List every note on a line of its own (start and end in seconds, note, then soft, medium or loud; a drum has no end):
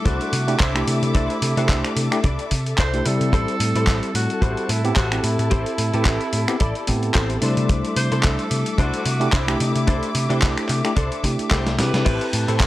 0.00 0.45 G3 loud
0.00 0.44 A3 medium
0.00 0.44 D4 medium
0.00 0.45 E4 medium
0.00 12.02 A4 medium
0.00 3.29 E5 medium
0.00 3.29 D6 medium
0.05 0.17 C2 loud
0.05 0.33 D4 medium
0.05 0.33 E4 medium
0.05 0.63 F#4 loud
0.05 0.33 A4 medium
0.05 0.33 C5 medium
0.05 kick loud
0.05 closed hi-hat medium
0.21 closed hi-hat soft
0.33 0.54 C3 medium
0.33 open hi-hat loud
0.47 0.54 A3 loud
0.47 0.55 D4 medium
0.47 0.55 E4 medium
0.47 0.55 G4 loud
0.47 closed hi-hat soft
0.60 0.82 C2 medium
0.60 0.82 D4 medium
0.60 0.82 E4 medium
0.60 0.87 E4 medium
0.60 0.82 A4 medium
0.60 0.82 C5 loud
0.60 kick loud
0.60 clap loud
0.60 closed hi-hat medium
0.75 1.53 A3 medium
0.75 1.54 D4 medium
0.75 1.54 E4 medium
0.75 1.54 G4 medium
0.75 finger snap medium
0.75 closed hi-hat soft
0.87 0.99 C3 loud
0.87 1.93 E4 medium
0.87 open hi-hat medium
1.03 1.12 C3 loud
1.03 muted clean electric guitar stroke soft
1.03 closed hi-hat soft
1.15 1.26 C2 medium
1.15 1.36 D4 loud
1.15 1.36 E4 medium
1.15 1.36 A4 medium
1.15 1.36 C5 loud
1.15 kick loud
1.15 closed hi-hat medium
1.30 closed hi-hat soft
1.42 1.53 C3 medium
1.42 open hi-hat loud
1.57 1.66 C3 loud
1.57 2.08 A3 medium
1.57 2.08 D4 medium
1.57 1.91 D4 medium
1.57 2.08 E4 medium
1.57 1.91 E4 medium
1.57 2.09 G4 medium
1.57 1.91 A4 medium
1.57 1.91 C5 medium
1.57 closed hi-hat soft
1.69 1.81 C2 medium
1.69 kick loud
1.69 clap loud
1.69 closed hi-hat medium
1.85 finger snap medium
1.85 closed hi-hat soft
1.96 2.08 C3 medium
1.96 open hi-hat medium
2.11 2.18 A3 medium
2.11 2.18 D4 medium
2.11 2.18 E4 medium
2.11 2.19 G4 loud
2.11 finger snap medium
2.11 closed hi-hat soft
2.23 2.36 C2 loud
2.23 2.51 D4 medium
2.23 2.51 E4 medium
2.23 2.51 A4 medium
2.23 2.51 D5 medium
2.23 kick loud
2.23 closed hi-hat medium
2.39 closed hi-hat soft
2.51 2.73 C3 medium
2.51 kick medium
2.51 open hi-hat loud
2.66 closed hi-hat soft
2.78 3.00 C2 medium
2.78 3.00 D4 medium
2.78 3.00 E4 medium
2.78 3.00 A4 medium
2.78 3.08 C5 loud
2.78 3.00 C5 medium
2.78 kick loud
2.78 clap loud
2.78 closed hi-hat medium
2.93 3.03 A3 medium
2.93 3.03 D4 medium
2.93 3.03 E4 medium
2.93 3.03 G4 medium
2.93 closed hi-hat soft
3.06 3.17 C3 medium
3.06 4.82 G3 loud
3.06 4.81 C4 medium
3.06 4.81 E4 medium
3.06 4.15 A4 loud
3.06 open hi-hat medium
3.21 3.30 C3 loud
3.21 muted clean electric guitar stroke soft
3.21 closed hi-hat soft
3.33 3.44 A1 medium
3.33 3.54 E4 loud
3.33 3.54 G4 medium
3.33 3.54 A4 loud
3.33 3.55 C5 loud
3.33 7.38 A5 medium
3.33 kick loud
3.33 closed hi-hat medium
3.48 closed hi-hat soft
3.60 3.72 A2 medium
3.60 open hi-hat loud
3.75 3.84 A2 loud
3.75 4.09 E4 medium
3.75 4.09 G4 medium
3.75 4.09 A4 medium
3.75 4.09 C5 medium
3.75 closed hi-hat soft
3.87 3.99 A1 medium
3.87 kick loud
3.87 clap loud
3.87 closed hi-hat medium
4.03 closed hi-hat soft
4.15 4.26 A2 medium
4.15 4.72 F#4 loud
4.15 open hi-hat medium
4.30 closed hi-hat soft
4.42 4.54 A1 loud
4.42 4.69 E4 medium
4.42 4.69 G4 medium
4.42 4.69 A4 medium
4.42 4.69 C5 loud
4.42 kick loud
4.42 closed hi-hat medium
4.57 closed hi-hat soft
4.69 4.91 A2 medium
4.69 4.97 E4 medium
4.69 open hi-hat loud
4.84 4.91 B3 medium
4.84 4.91 C4 medium
4.84 4.91 E4 medium
4.84 4.91 G4 loud
4.84 closed hi-hat soft
4.96 5.18 A1 medium
4.96 5.18 E4 medium
4.96 5.26 F#4 loud
4.96 5.18 G4 medium
4.96 5.18 A4 medium
4.96 5.18 C5 loud
4.96 kick loud
4.96 clap loud
4.96 closed hi-hat medium
5.12 5.90 C4 medium
5.12 5.90 E4 medium
5.12 5.91 G4 medium
5.12 finger snap medium
5.12 closed hi-hat soft
5.24 5.35 A2 medium
5.24 7.42 E4 loud
5.24 open hi-hat medium
5.39 5.48 A2 loud
5.39 muted clean electric guitar stroke soft
5.39 closed hi-hat soft
5.51 5.63 A1 loud
5.51 5.72 E4 medium
5.51 5.72 G4 loud
5.51 5.73 A4 loud
5.51 5.73 C5 loud
5.51 kick loud
5.51 closed hi-hat medium
5.66 closed hi-hat soft
5.78 5.90 A2 medium
5.78 open hi-hat loud
5.93 6.03 A2 loud
5.93 6.45 C4 medium
5.93 6.27 E4 medium
5.93 6.45 E4 medium
5.93 6.27 G4 medium
5.93 6.45 G4 medium
5.93 6.27 A4 medium
5.93 6.27 B4 medium
5.93 closed hi-hat soft
6.05 6.17 A1 medium
6.05 kick loud
6.05 clap loud
6.05 closed hi-hat medium
6.21 closed hi-hat soft
6.33 6.44 A2 medium
6.33 open hi-hat medium
6.48 6.55 B3 loud
6.48 6.55 C4 medium
6.48 6.55 E4 medium
6.48 6.55 G4 loud
6.48 finger snap medium
6.48 closed hi-hat soft
6.60 6.72 A1 loud
6.60 6.87 E4 medium
6.60 6.88 G4 medium
6.60 6.88 A4 medium
6.60 6.88 D5 loud
6.60 kick loud
6.60 closed hi-hat medium
6.75 closed hi-hat soft
6.87 7.09 A2 medium
6.87 7.39 B3 medium
6.87 7.39 C4 medium
6.87 7.40 E4 medium
6.87 7.40 G4 medium
6.87 kick medium
6.87 open hi-hat loud
7.03 closed hi-hat soft
7.14 7.36 A1 medium
7.14 7.36 E4 medium
7.14 7.36 G4 medium
7.14 7.36 A4 medium
7.14 7.36 C5 loud
7.14 kick loud
7.14 clap loud
7.14 closed hi-hat medium
7.30 closed hi-hat soft
7.41 7.54 C3 medium
7.41 9.18 G3 loud
7.41 9.17 A3 medium
7.41 9.17 D4 medium
7.41 7.97 D4 medium
7.41 7.97 E4 medium
7.41 9.18 E4 medium
7.41 7.97 A4 medium
7.41 7.97 C5 loud
7.41 12.02 E5 medium
7.41 12.02 D6 loud
7.41 open hi-hat medium
7.57 7.66 C3 loud
7.57 closed hi-hat soft
7.69 7.81 C2 loud
7.69 kick loud
7.69 closed hi-hat medium
7.85 closed hi-hat soft
7.96 8.08 C3 medium
7.96 8.26 C5 loud
7.96 open hi-hat loud
8.12 8.21 C3 loud
8.12 8.45 D4 medium
8.12 8.45 E4 medium
8.12 8.45 A4 medium
8.12 8.45 C5 loud
8.12 closed hi-hat soft
8.23 8.36 C2 loud
8.23 8.81 A4 loud
8.23 kick loud
8.23 clap loud
8.23 closed hi-hat medium
8.39 closed hi-hat soft
8.51 8.63 C3 medium
8.51 open hi-hat medium
8.66 closed hi-hat soft
8.78 8.90 C2 loud
8.78 9.06 D4 medium
8.78 9.06 E4 medium
8.78 9.35 F#4 loud
8.78 9.06 A4 medium
8.78 9.06 C5 loud
8.78 kick loud
8.78 closed hi-hat medium
8.94 closed hi-hat soft
9.06 9.27 C3 medium
9.06 open hi-hat medium
9.20 9.27 A3 loud
9.20 9.27 D4 medium
9.20 9.27 E4 medium
9.20 9.27 G4 loud
9.20 closed hi-hat soft
9.32 9.54 C2 medium
9.32 9.54 D4 medium
9.32 9.61 E4 medium
9.32 9.54 E4 medium
9.32 9.54 A4 medium
9.32 9.54 C5 medium
9.32 kick loud
9.32 clap loud
9.32 closed hi-hat medium
9.47 10.26 A3 medium
9.47 10.26 D4 medium
9.47 10.26 E4 medium
9.47 10.27 G4 medium
9.47 finger snap medium
9.47 closed hi-hat soft
9.60 9.72 C3 medium
9.60 10.66 E4 medium
9.60 open hi-hat medium
9.76 9.85 C3 loud
9.76 muted clean electric guitar stroke soft
9.76 closed hi-hat soft
9.87 9.99 C2 loud
9.87 10.09 D4 loud
9.87 10.09 E4 medium
9.87 10.09 A4 loud
9.87 10.09 C5 loud
9.87 kick loud
9.87 closed hi-hat medium
10.03 closed hi-hat soft
10.15 10.26 C3 medium
10.15 open hi-hat loud
10.29 10.39 C3 loud
10.29 10.81 A3 medium
10.29 10.63 D4 loud
10.29 10.81 D4 medium
10.29 10.81 E4 medium
10.29 10.63 E4 medium
10.29 10.81 G4 medium
10.29 10.63 A4 medium
10.29 10.63 C5 medium
10.29 closed hi-hat soft
10.42 10.54 C2 medium
10.42 kick loud
10.42 clap loud
10.42 closed hi-hat medium
10.58 finger snap medium
10.58 closed hi-hat soft
10.69 10.81 C3 medium
10.69 clap soft
10.69 open hi-hat medium
10.84 10.91 A3 medium
10.84 10.91 D4 medium
10.84 10.91 E4 medium
10.84 10.91 G4 loud
10.84 finger snap medium
10.84 closed hi-hat soft
10.96 11.08 C2 medium
10.96 11.24 D4 medium
10.96 11.24 E4 medium
10.96 11.24 A4 medium
10.96 11.24 C5 loud
10.96 kick loud
10.96 closed hi-hat medium
11.12 closed hi-hat soft
11.24 11.35 C3 loud
11.24 11.75 A3 medium
11.24 11.76 D4 medium
11.24 11.76 E4 medium
11.24 11.76 G4 medium
11.24 kick medium
11.24 open hi-hat loud
11.39 muted picked electric bass stroke soft
11.39 closed hi-hat soft
11.51 11.80 C2 medium
11.51 11.72 D4 medium
11.51 11.72 E4 medium
11.51 11.80 G4 loud
11.51 11.73 A4 medium
11.51 11.73 C5 loud
11.51 kick loud
11.51 snare medium
11.51 clap loud
11.51 closed hi-hat medium
11.67 snare medium
11.67 closed hi-hat soft
11.78 11.90 C3 medium
11.78 12.67 C4 medium
11.78 12.67 E4 medium
11.78 12.67 G4 medium
11.78 12.60 B4 loud
11.78 snare medium
11.78 open hi-hat medium
11.94 12.03 C3 medium
11.94 muted clean electric guitar stroke soft
11.94 snare medium
11.94 closed hi-hat soft
12.05 12.17 A1 medium
12.05 12.27 E4 loud
12.05 12.27 G4 loud
12.05 12.27 A4 loud
12.05 12.67 A4 medium
12.05 12.27 C5 loud
12.05 12.67 G5 medium
12.05 12.67 A5 loud
12.05 kick loud
12.05 closed hi-hat medium
12.05 crash medium
12.21 closed hi-hat soft
12.33 12.45 A2 medium
12.33 open hi-hat loud
12.48 12.57 A2 loud
12.48 12.67 E4 medium
12.48 12.67 G4 medium
12.48 12.67 A4 medium
12.48 12.67 C5 loud
12.48 closed hi-hat soft
12.60 12.67 A1 medium
12.60 kick loud
12.60 clap loud
12.60 closed hi-hat medium